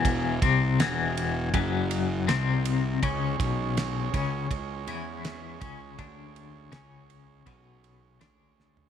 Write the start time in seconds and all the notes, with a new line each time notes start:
Already playing: E1 E2
0.05 kick, ride
0.42 C2 C3, kick, ride
0.79 E1 E2, snare, ride
1.17 ride
1.54 F#1 F#2, kick, ride
1.91 ride
2.28 C2 C3, snare, ride
2.65 ride
3.03 C#2 C#3 G#3 C#4 G#4 C#5, kick, ride
3.40 B1 B2, kick, ride
3.77 snare, ride
4.14 C#2 C#3, kick, ride
4.51 C#2 C#3, kick, ride
4.87 E2 E3, ride
5.25 snare, ride
5.61 C#2 C#3, kick, ride
5.99 D2 D3, kick, ride
6.36 ride
6.72 C#2 C#3, snare, ride
7.10 ride
7.46 B1 B2, kick, ride
7.84 ride
8.21 D2 D3, snare, ride
8.60 snare
8.77 floor tom